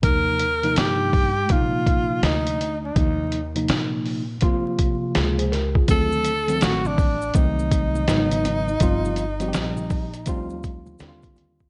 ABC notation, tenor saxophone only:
X:1
M:4/4
L:1/16
Q:"Swing 16ths" 1/4=82
K:Eb
V:1 name="Tenor saxophone"
B4 G4 F4 E3 E- | E3 z12 z | =A4 ^F D3 E8- | E12 z4 |]